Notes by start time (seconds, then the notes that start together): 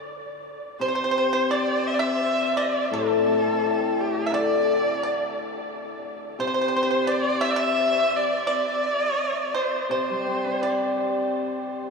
0.80 C3 C5
0.88 C5
0.95 C5
1.04 C5
1.11 C5
1.18 C5
1.33 C5
1.51 D5
1.87 E5
1.94 D5
1.99 E5
2.57 D5
2.91 A2 A4
3.10 E3
3.28 A3
3.46 C4
3.64 E4
4.00 G4
4.26 E5
4.32 D3 D5
5.03 D5
6.39 C3 C5
6.47 C5
6.54 C5
6.61 C5
6.68 C5
6.76 C5
6.83 C5
6.91 C5
7.07 D5
7.12 D5
7.41 E5
7.51 D5
7.56 E5
8.16 D5
8.47 D5
8.51 D5
9.54 C5
9.89 C3 C5
10.10 G3
10.27 C4
10.45 D4
10.62 G4 D5